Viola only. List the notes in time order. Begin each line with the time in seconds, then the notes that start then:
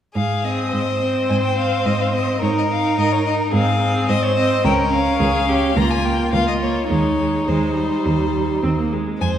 0.45 C4
1.02 C4
1.58 C4
2.14 C4
2.42 D#4
2.69 D#4
3.25 D#4
3.53 C4
3.81 C4
4.37 C4
4.65 C#4
4.92 C#4
5.48 C#4
5.77 A#3
6.05 A#3
6.61 A#3
6.90 G#3
7.19 G#3
7.48 G#3
7.76 G3
8.63 C4
8.78 A#3
8.92 G#3